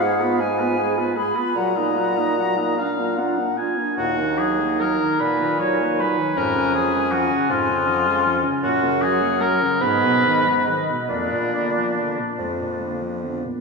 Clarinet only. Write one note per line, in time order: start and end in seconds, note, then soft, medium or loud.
0.02 0.23 G#4 medium
0.21 0.42 F4 medium
0.40 0.60 G#4 medium
0.59 0.77 F4 medium
0.77 0.98 G#4 medium
0.96 1.17 F4 medium
1.16 1.37 G#4 medium
1.36 1.56 F4 medium
1.56 1.78 F#4 medium
1.76 1.97 D#4 medium
1.96 2.17 F#4 soft
2.16 2.36 D#4 medium
2.36 2.57 F#4 soft
2.56 2.76 D#4 soft
2.76 2.98 F4 medium
2.97 3.18 D4 soft
3.16 3.38 F4 medium
3.37 3.57 D4 soft
3.57 3.80 F4 soft
3.78 3.97 D4 soft
3.98 6.38 D#4 medium
6.37 9.83 C#4 medium
9.81 10.79 B3 medium
11.08 12.26 A#3 soft
12.38 12.81 G#3 medium
12.80 13.23 A#3 soft
13.22 13.61 B3 soft